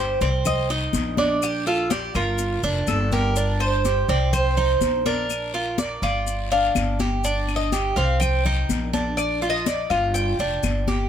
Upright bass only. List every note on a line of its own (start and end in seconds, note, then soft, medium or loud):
0.00 0.15 G1 medium
0.21 0.90 C2 medium
0.94 2.08 A#1 medium
2.15 2.60 G1 medium
2.63 2.86 F1 medium
2.87 4.02 G1 medium
4.08 4.77 C2 medium
4.81 5.96 A#1 medium
6.02 6.71 G1 medium
6.76 7.91 G1 medium
7.96 8.65 C2 medium
8.69 9.84 A#1 medium
9.90 10.36 G1 medium
10.39 10.62 F1 medium
10.64 11.09 G1 medium